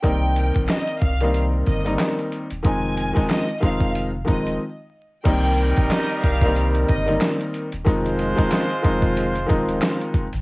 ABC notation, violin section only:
X:1
M:4/4
L:1/16
Q:"Swing 16ths" 1/4=92
K:Cm
V:1 name="Violin section"
g4 e2 f2 z2 e z4 z | a4 e2 f2 z2 e z4 z | g4 e2 f2 z2 e z4 z | z16 |]